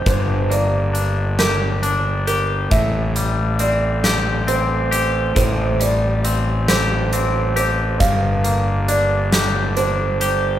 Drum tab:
HH |xxxxxx|xxxxxx|xxxxxx|xxxxxx|
SD |---o--|---o--|---o--|---o--|
BD |o-----|o-----|o-----|o-----|